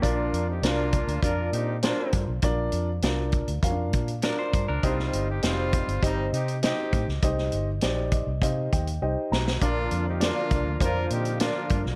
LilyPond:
<<
  \new Staff \with { instrumentName = "Clean electric guitar" } { \time 4/4 \key bes \major \tempo 4 = 100 r1 | r2. <d' bes'>16 c''8 <d' bes'>16~ | <d' bes'>16 r2. r8. | r1 |
r1 | }
  \new Staff \with { instrumentName = "Grand piano" } { \time 4/4 \key bes \major << { r1 | r1 | r1 | r4. ees''8 f''8 g''8 g''8 bes''8 |
r1 | } \\ { <d' f' bes' d''>8. r16 <d' f' bes' d''>8. r16 <d' f' bes' d''>8. r16 <d' f' bes' c''>8. r16 | <d' f' bes' d''>8. r16 <d' f' bes' d''>8. r16 <des' d' f' bes' f''>8. r16 <d' f' bes' d''>8. r16 | <ees' g' c'' ees''>8. r16 <ees' g' c'' ees''>8. r16 <ees' g' c'' ees''>8. r16 <ees' g' c'' ees''>8. r16 | <ees' g' c'' ees''>8. r16 <ees' g' c'' d''>8. r16 <ees' g' c'' ees''>8. r16 <ees' g' c'' ees''>8. r16 |
<d' f' bes' d''>8. r16 <d' f' bes' d''>8. r16 <d' f' bes' c''>8. r16 <d' f' bes' d''>8. r16 | } >> }
  \new Staff \with { instrumentName = "Horn section" } { \time 4/4 \key bes \major <bes d' f'>8. <c' ees' g'>16 <bes d' f'>4 <d' f' bes'>8 <c' ees' g'>8 <bes d' f'>8. r16 | r1 | <g c' f'>8. <c' ees' g'>16 <g c' f'>4 <g c' ees'>8 <c' ees' g'>8 <c' ees' g'>8. r16 | r1 |
<bes d' f'>8. <c' ees' g'>16 <bes d' f'>4 <d' f' bes'>8 <c' ees' g'>8 <bes d' f'>8. r16 | }
  \new Staff \with { instrumentName = "Tonewheel organ" } { \clef bass \time 4/4 \key bes \major r1 | r1 | r1 | r1 |
<d f bes f'>1 | }
  \new Staff \with { instrumentName = "Fingered electric bass" } { \clef bass \time 4/4 \key bes \major bes,,8 f,8 c,8. d,16 f,8 bes,8. r16 g,16 ces,16 | bes,,8 f,8 c,8. d,16 f,8 bes,8. r16 g,16 des,16 | c,8 g,,8 f,,8. g,,16 g,,8 c8. r16 a,16 des,16 | c,8 g,,8 bes,,8. c,16 c8 ees,8 c,16 r16 ces,8 |
bes,,8 f,8. r16 c,16 d,16 f,8 bes,8. r16 g,16 ces,16 | }
  \new DrumStaff \with { instrumentName = "Drums" } \drummode { \time 4/4 <hh bd>8 hh8 <hh sn>8 <hh bd>16 hh16 <hh bd>8 hh8 <hh sn>8 <hh bd>8 | <hh bd>8 hh8 <hh sn>8 <hh bd>16 hh16 <hh bd>8 <hh bd>16 hh16 <hh sn>8 <hh bd>8 | <hh bd>16 sn16 hh8 <hh sn>8 <hh bd>16 hh16 <hh bd>8 hh16 hh16 <hh sn>8 <hh bd>16 sn16 | <hh bd>16 sn16 hh8 <hh sn>8 <hh bd>8 <hh bd>8 <hh bd>16 hh16 r8 sn16 sn16 |
<hh bd>8 hh8 <hh sn>8 <hh bd>8 <hh bd>8 hh16 hh16 <hh sn>8 <hh bd>16 sn16 | }
>>